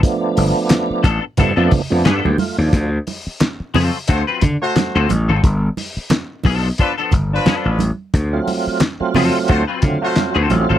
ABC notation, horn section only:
X:1
M:4/4
L:1/16
Q:"Swing 16ths" 1/4=89
K:G
V:1 name="Horn section"
z16 | z8 [A,Fc] z2 [A,Fc]3 z2 | z8 [=F,DB] z2 [F,DB]3 z2 | z8 [A,Fc] z2 [A,Fc]3 z2 |]